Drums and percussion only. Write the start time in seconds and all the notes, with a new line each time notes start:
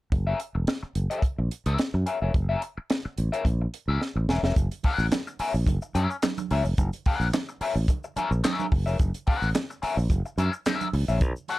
0.12 kick, closed hi-hat
0.40 closed hi-hat
0.67 snare, closed hi-hat
0.95 closed hi-hat
1.11 closed hi-hat
1.22 kick, closed hi-hat
1.51 closed hi-hat
1.66 closed hi-hat
1.78 snare, closed hi-hat
2.07 closed hi-hat
2.34 kick, closed hi-hat
2.62 closed hi-hat
2.90 snare, closed hi-hat
3.18 closed hi-hat
3.33 closed hi-hat
3.45 kick, closed hi-hat
3.74 closed hi-hat
4.01 snare
4.29 snare
4.44 snare
4.56 kick, closed hi-hat, muted conga, shaker
4.71 closed hi-hat, shaker
4.83 kick, open hi-hat, muted conga
4.99 shaker
5.12 snare, clap, closed hi-hat, high conga, shaker
5.27 shaker
5.39 open hi-hat
5.54 shaker
5.67 kick, closed hi-hat, muted conga, shaker
5.82 shaker
5.95 closed hi-hat, muted conga, shaker
6.10 shaker
6.22 snare, clap, closed hi-hat, high conga, shaker
6.38 closed hi-hat, high conga, shaker
6.51 open hi-hat
6.65 shaker
6.78 kick, closed hi-hat, muted conga, shaker
6.93 closed hi-hat, shaker
7.06 kick, open hi-hat
7.21 shaker
7.33 snare, clap, closed hi-hat, high conga, shaker
7.49 shaker
7.61 open hi-hat
7.76 shaker
7.88 kick, closed hi-hat, muted conga, shaker
8.04 shaker
8.17 closed hi-hat, muted conga, shaker
8.32 shaker
8.44 snare, clap, closed hi-hat, high conga, shaker
8.59 high conga, shaker
8.72 kick, open hi-hat
8.87 shaker
8.99 kick, closed hi-hat, muted conga, shaker
9.14 closed hi-hat, shaker
9.27 kick, open hi-hat
9.42 shaker
9.55 snare, clap, closed hi-hat, high conga, shaker
9.70 shaker
9.83 open hi-hat
9.98 shaker
10.10 kick, closed hi-hat, muted conga, shaker
10.26 shaker
10.38 closed hi-hat, muted conga, shaker
10.53 shaker
10.66 snare, clap, closed hi-hat, high conga, shaker
10.81 closed hi-hat, high conga, shaker
10.93 open hi-hat
11.08 shaker
11.21 kick, closed hi-hat, muted conga, shaker
11.36 shaker
11.48 open hi-hat, muted conga, shaker